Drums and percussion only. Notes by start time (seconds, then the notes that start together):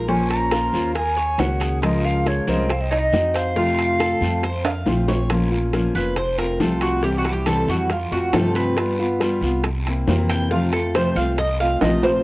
0.08 high bongo, long guiro
0.30 high bongo, high timbale
0.52 high bongo, high timbale, short guiro
0.74 short guiro
0.95 high bongo, high timbale, long guiro
1.18 high bongo
1.39 high bongo, low bongo, high timbale, low timbale, short guiro
1.60 high bongo, high timbale, short guiro
1.82 high bongo, high timbale, long guiro
2.05 high bongo
2.26 high bongo, high timbale, short guiro
2.48 short guiro
2.69 high bongo, high timbale, long guiro
2.91 high bongo, high timbale
3.13 high bongo, low bongo, short guiro
3.35 high bongo, high timbale, short guiro
3.56 high bongo, long guiro
3.78 high bongo, high timbale
4.00 high bongo, high timbale, short guiro
4.22 short guiro
4.43 high bongo, high timbale, long guiro
4.64 high bongo, high timbale
4.86 high bongo, low bongo, short guiro
5.08 high bongo, low timbale, short guiro
5.30 high bongo, high timbale, long guiro
5.52 high bongo
5.73 high bongo, high timbale, short guiro
5.96 short guiro
6.16 high bongo, high timbale, long guiro
6.38 high bongo, high timbale
6.60 high bongo, low bongo, short guiro
6.81 high bongo, high timbale, short guiro
7.03 high bongo, long guiro
7.25 high bongo, high timbale
7.46 high bongo, high timbale, short guiro
7.68 short guiro
7.90 high bongo, high timbale, long guiro
8.12 high bongo
8.33 high bongo, low bongo, high timbale, low timbale, short guiro
8.55 high bongo, high timbale, short guiro
8.77 high bongo, high timbale, long guiro
8.99 high bongo
9.20 high bongo, high timbale, short guiro
9.42 short guiro
9.64 high bongo, high timbale, long guiro
9.86 high bongo, high timbale
10.08 high bongo, low bongo, low timbale, short guiro
10.29 high bongo, high timbale, short guiro
10.51 high bongo, long guiro
10.73 high bongo, high timbale
10.95 high bongo, high timbale, short guiro
11.17 short guiro
11.38 high bongo, high timbale, long guiro
11.60 high bongo
11.81 high bongo, low bongo, high timbale, short guiro
12.03 high bongo, low timbale, short guiro